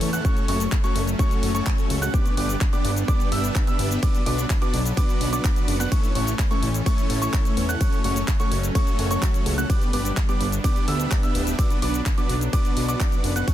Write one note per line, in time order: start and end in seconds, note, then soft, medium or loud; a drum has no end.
0.00 0.20 E2 loud
0.00 0.23 E3 medium
0.00 0.10 A3 medium
0.00 2.10 A3 medium
0.00 0.10 C#4 medium
0.00 0.23 C#4 medium
0.00 0.10 E4 medium
0.00 0.10 A4 medium
0.00 0.10 C#5 loud
0.00 0.10 C#6 loud
0.00 open hi-hat loud
0.13 0.23 A3 loud
0.13 0.23 C#4 medium
0.13 0.23 E4 medium
0.13 0.23 A4 medium
0.13 0.23 F#5 loud
0.13 0.23 F#6 loud
0.13 closed hi-hat soft
0.13 cabasa medium
0.25 2.12 F#3 medium
0.25 0.46 A3 medium
0.25 2.12 C#4 loud
0.25 0.46 C#4 medium
0.25 0.46 F#4 medium
0.25 0.46 A4 medium
0.25 0.46 C#5 medium
0.25 0.46 C#6 medium
0.25 kick loud
0.25 closed hi-hat medium
0.25 cabasa medium
0.37 closed hi-hat soft
0.37 cabasa soft
0.48 0.68 F#1 loud
0.48 0.66 A3 medium
0.48 0.66 C#4 medium
0.48 0.66 F#4 medium
0.48 0.66 A4 medium
0.48 0.66 C#5 medium
0.48 0.66 C#6 medium
0.48 open hi-hat loud
0.60 closed hi-hat soft
0.60 cabasa medium
0.72 kick loud
0.72 clap loud
0.72 closed hi-hat medium
0.72 cabasa medium
0.84 1.02 A3 medium
0.84 1.02 C#4 medium
0.84 1.02 F#4 medium
0.84 1.02 A4 medium
0.84 1.02 C#5 loud
0.84 1.02 C#6 loud
0.84 closed hi-hat soft
0.84 cabasa soft
0.96 1.15 F#1 loud
0.96 open hi-hat loud
1.07 closed hi-hat soft
1.07 cabasa medium
1.19 1.52 A3 loud
1.19 1.52 C#4 medium
1.19 1.52 F#4 medium
1.19 1.52 A4 medium
1.19 1.52 C#5 loud
1.19 1.52 C#6 loud
1.19 kick loud
1.19 closed hi-hat medium
1.19 cabasa medium
1.31 closed hi-hat soft
1.31 cabasa soft
1.43 1.62 F#1 medium
1.43 open hi-hat loud
1.55 1.99 A3 medium
1.55 1.99 C#4 medium
1.55 1.99 F#4 medium
1.55 1.99 A4 medium
1.55 1.99 C#5 loud
1.55 1.99 C#6 loud
1.55 closed hi-hat soft
1.55 cabasa medium
1.67 kick loud
1.67 clap loud
1.67 closed hi-hat medium
1.67 cabasa medium
1.78 closed hi-hat soft
1.78 cabasa soft
1.90 2.09 C#2 loud
1.90 open hi-hat loud
2.02 2.12 A3 loud
2.02 2.12 C#4 medium
2.02 2.12 F#4 loud
2.02 2.12 A4 medium
2.02 2.12 F#5 loud
2.02 2.12 F#6 loud
2.02 closed hi-hat soft
2.02 cabasa medium
2.14 4.01 G3 medium
2.14 2.35 B3 medium
2.14 4.01 B3 medium
2.14 2.35 D4 medium
2.14 5.88 D4 medium
2.14 2.35 G4 medium
2.14 2.35 B4 medium
2.14 2.35 D5 medium
2.14 2.35 D6 medium
2.14 kick loud
2.14 closed hi-hat medium
2.14 cabasa medium
2.26 closed hi-hat soft
2.26 cabasa soft
2.37 2.57 G1 loud
2.37 2.55 B3 medium
2.37 2.55 D4 medium
2.37 2.55 G4 medium
2.37 2.55 B4 medium
2.37 2.55 D5 medium
2.37 2.55 D6 medium
2.37 open hi-hat loud
2.50 cabasa medium
2.61 kick loud
2.61 clap loud
2.61 closed hi-hat medium
2.61 cabasa medium
2.73 2.91 B3 medium
2.73 2.91 D4 medium
2.73 2.91 G4 medium
2.73 2.91 B4 medium
2.73 2.91 D5 loud
2.73 2.91 D6 loud
2.73 closed hi-hat soft
2.73 cabasa soft
2.85 3.04 G1 medium
2.85 open hi-hat loud
2.96 closed hi-hat soft
2.96 cabasa medium
3.08 3.30 B3 loud
3.08 3.30 D4 medium
3.08 3.30 G4 medium
3.08 3.30 B4 medium
3.08 3.30 D5 loud
3.08 3.30 D6 loud
3.08 kick loud
3.08 closed hi-hat medium
3.08 cabasa medium
3.20 closed hi-hat soft
3.20 cabasa soft
3.32 3.51 G1 medium
3.32 3.64 B3 medium
3.32 3.64 D4 medium
3.32 3.64 G4 medium
3.32 3.64 B4 medium
3.32 3.64 E5 loud
3.32 3.64 E6 medium
3.32 open hi-hat loud
3.44 closed hi-hat soft
3.44 cabasa medium
3.55 kick loud
3.55 clap loud
3.55 closed hi-hat medium
3.55 cabasa medium
3.67 4.00 B3 medium
3.67 4.00 D4 medium
3.67 4.00 G4 medium
3.67 4.00 B4 medium
3.67 4.00 E5 medium
3.67 4.00 E6 medium
3.67 closed hi-hat soft
3.67 cabasa soft
3.79 3.98 G1 medium
3.79 open hi-hat loud
3.91 closed hi-hat soft
3.91 cabasa medium
4.03 5.90 F#3 medium
4.03 5.90 B3 medium
4.03 4.24 B3 medium
4.03 4.24 D4 medium
4.03 4.24 F#4 medium
4.03 4.24 B4 medium
4.03 4.24 D5 medium
4.03 4.24 D6 medium
4.03 kick loud
4.03 closed hi-hat medium
4.03 ride medium
4.03 cabasa medium
4.15 closed hi-hat soft
4.15 cabasa soft
4.26 4.46 B1 loud
4.26 4.44 B3 medium
4.26 4.44 D4 medium
4.26 4.44 F#4 medium
4.26 4.44 B4 medium
4.26 4.44 D5 loud
4.26 4.44 D6 medium
4.26 open hi-hat loud
4.38 closed hi-hat soft
4.38 cabasa medium
4.50 kick loud
4.50 clap loud
4.50 closed hi-hat medium
4.50 ride medium
4.50 cabasa medium
4.62 4.80 B3 medium
4.62 4.80 D4 medium
4.62 4.80 F#4 medium
4.62 4.80 B4 medium
4.62 4.80 D5 loud
4.62 4.80 D6 loud
4.62 closed hi-hat soft
4.62 cabasa soft
4.74 4.93 B1 medium
4.74 open hi-hat loud
4.85 closed hi-hat soft
4.85 cabasa medium
4.97 5.30 B3 loud
4.97 5.30 D4 medium
4.97 5.30 F#4 medium
4.97 5.30 B4 medium
4.97 5.30 D5 loud
4.97 5.30 D6 loud
4.97 kick loud
4.97 closed hi-hat medium
4.97 ride medium
4.97 cabasa medium
5.09 closed hi-hat soft
5.09 cabasa soft
5.21 5.40 B1 medium
5.21 open hi-hat loud
5.33 5.77 B3 medium
5.33 5.77 D4 medium
5.33 5.77 F#4 medium
5.33 5.77 B4 medium
5.33 5.77 D5 loud
5.33 5.77 D6 medium
5.33 closed hi-hat soft
5.33 cabasa medium
5.44 kick loud
5.44 clap loud
5.44 closed hi-hat medium
5.44 ride medium
5.44 cabasa medium
5.56 closed hi-hat soft
5.56 cabasa soft
5.68 5.87 F#1 loud
5.68 open hi-hat loud
5.80 5.90 B3 loud
5.80 5.90 D4 medium
5.80 5.90 F#4 medium
5.80 5.90 B4 medium
5.80 5.90 F#5 loud
5.80 5.90 F#6 loud
5.80 closed hi-hat soft
5.80 cabasa medium
5.92 7.79 E3 medium
5.92 6.13 A3 medium
5.92 7.79 A3 medium
5.92 9.66 C#4 loud
5.92 6.13 C#4 medium
5.92 6.13 E4 medium
5.92 6.13 A4 medium
5.92 6.13 C#5 medium
5.92 6.12 C#6 medium
5.92 kick loud
5.92 closed hi-hat medium
5.92 ride medium
5.92 cabasa medium
6.04 closed hi-hat soft
6.04 cabasa soft
6.15 6.34 A1 loud
6.15 6.33 A3 medium
6.15 6.33 C#4 medium
6.15 6.33 E4 medium
6.15 6.33 A4 medium
6.15 6.33 C#5 loud
6.15 6.33 C#6 medium
6.15 open hi-hat loud
6.27 closed hi-hat soft
6.27 cabasa medium
6.39 kick loud
6.39 clap loud
6.39 closed hi-hat medium
6.39 ride medium
6.39 cabasa medium
6.51 6.69 A3 medium
6.51 6.69 C#4 medium
6.51 6.69 E4 medium
6.51 6.69 A4 medium
6.51 6.69 C#5 medium
6.51 6.69 C#6 loud
6.51 closed hi-hat soft
6.51 cabasa soft
6.63 6.82 A1 medium
6.63 open hi-hat loud
6.74 closed hi-hat soft
6.74 cabasa medium
6.86 7.19 A3 loud
6.86 7.19 C#4 medium
6.86 7.19 E4 medium
6.86 7.19 A4 medium
6.86 7.19 C#5 loud
6.86 7.19 C#6 loud
6.86 kick loud
6.86 closed hi-hat medium
6.86 ride medium
6.86 cabasa medium
6.98 closed hi-hat soft
6.98 cabasa soft
7.10 7.29 A1 medium
7.10 open hi-hat loud
7.22 7.66 A3 medium
7.22 7.66 C#4 medium
7.22 7.66 E4 medium
7.22 7.66 A4 medium
7.22 7.66 C#5 loud
7.22 7.66 C#6 loud
7.22 closed hi-hat soft
7.22 cabasa medium
7.33 kick loud
7.33 clap loud
7.33 closed hi-hat medium
7.33 ride medium
7.33 cabasa medium
7.45 closed hi-hat soft
7.45 cabasa soft
7.57 7.76 E2 loud
7.57 open hi-hat loud
7.69 7.79 A3 loud
7.69 7.79 C#4 medium
7.69 7.79 E4 medium
7.69 7.79 A4 medium
7.69 7.79 F#5 loud
7.69 7.79 F#6 loud
7.69 closed hi-hat soft
7.69 cabasa medium
7.81 9.68 F#3 medium
7.81 9.68 A3 medium
7.81 8.02 A3 medium
7.81 8.02 C#4 medium
7.81 8.02 F#4 medium
7.81 8.02 A4 medium
7.81 8.02 C#5 medium
7.81 8.02 C#6 medium
7.81 kick loud
7.81 closed hi-hat medium
7.81 ride medium
7.81 cabasa medium
7.93 closed hi-hat soft
7.93 cabasa soft
8.04 8.23 F#1 loud
8.04 8.22 A3 medium
8.04 8.22 C#4 medium
8.04 8.22 F#4 medium
8.04 8.22 A4 medium
8.04 8.22 C#5 medium
8.04 8.22 C#6 medium
8.04 open hi-hat loud
8.16 closed hi-hat soft
8.16 cabasa medium
8.28 kick loud
8.28 clap loud
8.28 closed hi-hat medium
8.28 ride medium
8.28 cabasa medium
8.40 8.58 A3 medium
8.40 8.58 C#4 medium
8.40 8.58 F#4 medium
8.40 8.58 A4 medium
8.40 8.58 C#5 loud
8.40 8.58 C#6 loud
8.40 closed hi-hat soft
8.40 cabasa soft
8.52 8.71 F#1 medium
8.52 open hi-hat loud
8.63 closed hi-hat soft
8.63 cabasa medium
8.75 9.08 A3 loud
8.75 9.08 C#4 medium
8.75 9.08 F#4 medium
8.75 9.08 A4 medium
8.75 9.08 C#5 loud
8.75 9.08 C#6 loud
8.75 kick loud
8.75 closed hi-hat medium
8.75 ride medium
8.75 cabasa medium
8.87 closed hi-hat soft
8.87 cabasa soft
8.99 9.18 F#1 medium
8.99 open hi-hat loud
9.11 9.55 A3 medium
9.11 9.55 C#4 medium
9.11 9.55 F#4 medium
9.11 9.55 A4 medium
9.11 9.55 C#5 loud
9.11 9.55 C#6 loud
9.11 closed hi-hat soft
9.11 cabasa medium
9.22 kick loud
9.22 clap loud
9.22 closed hi-hat medium
9.22 ride medium
9.22 cabasa medium
9.34 closed hi-hat soft
9.34 cabasa soft
9.46 9.65 C#2 loud
9.46 open hi-hat loud
9.58 9.68 A3 loud
9.58 9.68 C#4 medium
9.58 9.68 F#4 medium
9.58 9.68 A4 medium
9.58 9.68 F#5 loud
9.58 9.68 F#6 loud
9.58 closed hi-hat soft
9.58 cabasa medium
9.70 11.57 G3 medium
9.70 13.44 B3 medium
9.70 9.90 B3 medium
9.70 13.44 D4 medium
9.70 9.90 D4 medium
9.70 9.90 G4 medium
9.70 9.90 B4 medium
9.70 9.90 D5 medium
9.70 9.90 D6 medium
9.70 kick loud
9.70 closed hi-hat medium
9.70 ride medium
9.70 cabasa medium
9.82 closed hi-hat soft
9.82 cabasa soft
9.93 10.12 G1 loud
9.93 10.11 B3 medium
9.93 10.11 D4 medium
9.93 10.11 G4 medium
9.93 10.11 B4 medium
9.93 10.11 D5 loud
9.93 10.11 D6 medium
9.93 open hi-hat loud
10.05 closed hi-hat soft
10.05 cabasa medium
10.17 kick loud
10.17 clap loud
10.17 closed hi-hat medium
10.17 ride medium
10.17 cabasa medium
10.29 10.47 B3 medium
10.29 10.47 D4 medium
10.29 10.47 G4 medium
10.29 10.47 B4 medium
10.29 10.47 D5 medium
10.29 10.47 D6 loud
10.29 closed hi-hat soft
10.29 cabasa soft
10.41 10.60 G1 medium
10.41 open hi-hat loud
10.52 closed hi-hat soft
10.52 cabasa medium
10.64 10.85 B3 loud
10.64 10.85 D4 medium
10.64 10.85 G4 medium
10.64 10.85 B4 medium
10.64 10.85 D5 loud
10.64 10.85 D6 loud
10.64 kick loud
10.64 closed hi-hat medium
10.64 ride medium
10.64 cabasa medium
10.76 closed hi-hat soft
10.76 cabasa soft
10.88 11.07 D2 medium
10.88 11.20 B3 medium
10.88 11.20 D4 medium
10.88 11.20 G4 medium
10.88 11.20 B4 medium
10.88 11.20 E5 loud
10.88 11.20 E6 loud
10.88 open hi-hat loud
11.00 closed hi-hat soft
11.00 cabasa medium
11.11 kick loud
11.11 clap loud
11.11 closed hi-hat medium
11.11 ride medium
11.11 cabasa medium
11.23 11.56 B3 medium
11.23 11.56 D4 medium
11.23 11.56 G4 medium
11.23 11.56 B4 medium
11.23 11.56 E5 medium
11.23 11.56 E6 medium
11.23 closed hi-hat soft
11.23 cabasa soft
11.35 11.54 D1 medium
11.35 open hi-hat loud
11.47 closed hi-hat soft
11.47 cabasa medium
11.59 13.46 F#3 medium
11.59 11.79 B3 medium
11.59 11.79 D4 medium
11.59 11.79 F#4 medium
11.59 11.79 B4 medium
11.59 11.79 D5 medium
11.59 11.79 D6 medium
11.59 kick loud
11.59 closed hi-hat medium
11.59 ride medium
11.59 cabasa medium
11.70 closed hi-hat soft
11.70 cabasa soft
11.82 12.01 B1 loud
11.82 12.00 B3 medium
11.82 12.00 D4 medium
11.82 12.00 F#4 medium
11.82 12.00 B4 medium
11.82 12.00 D5 medium
11.82 12.00 D6 medium
11.82 open hi-hat loud
11.94 closed hi-hat soft
11.94 cabasa medium
12.06 kick loud
12.06 clap loud
12.06 closed hi-hat medium
12.06 ride medium
12.06 cabasa medium
12.18 12.35 B3 medium
12.18 12.35 D4 medium
12.18 12.35 F#4 medium
12.18 12.35 B4 medium
12.18 12.35 D5 loud
12.18 12.35 D6 loud
12.18 closed hi-hat soft
12.18 cabasa soft
12.29 12.49 B1 medium
12.29 open hi-hat loud
12.41 closed hi-hat soft
12.41 cabasa medium
12.53 12.86 B3 loud
12.53 12.86 D4 medium
12.53 12.86 F#4 medium
12.53 12.86 B4 medium
12.53 12.86 D5 loud
12.53 12.86 D6 loud
12.53 kick loud
12.53 closed hi-hat medium
12.53 ride medium
12.53 cabasa medium
12.65 closed hi-hat soft
12.65 cabasa soft
12.77 12.96 B1 medium
12.77 open hi-hat loud
12.89 13.33 B3 medium
12.89 13.33 D4 medium
12.89 13.33 F#4 medium
12.89 13.33 B4 medium
12.89 13.33 D5 loud
12.89 13.33 D6 loud
12.89 closed hi-hat soft
12.89 cabasa medium
13.00 kick loud
13.00 clap loud
13.00 closed hi-hat medium
13.00 ride medium
13.00 cabasa medium
13.12 closed hi-hat soft
13.12 cabasa soft
13.24 13.43 F#1 loud
13.24 open hi-hat loud
13.36 13.46 B3 loud
13.36 13.46 D4 medium
13.36 13.46 F#4 medium
13.36 13.46 B4 medium
13.36 13.46 F#5 loud
13.36 13.46 F#6 loud
13.36 closed hi-hat soft
13.36 cabasa medium
13.48 13.54 E3 medium
13.48 13.54 A3 medium
13.48 13.54 C#4 medium
13.48 13.54 C#4 loud
13.48 13.54 E4 medium
13.48 13.54 A4 medium
13.48 13.54 C#5 medium
13.48 13.54 C#6 medium
13.48 kick loud
13.48 closed hi-hat medium
13.48 ride medium
13.48 cabasa medium